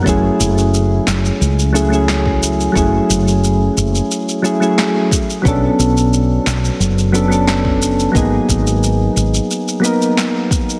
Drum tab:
SH |x-xxx-xxxxxxx-xx|x-xxx-xxxxxxx-xx|x-xxx-xxxxxxx-xx|x-xxx-xxxxxxx-xx|
SD |------o-----o---|------------o---|------o-----o---|------------o---|
BD |o------------o--|o-------------o-|o------------o--|o-o-----------o-|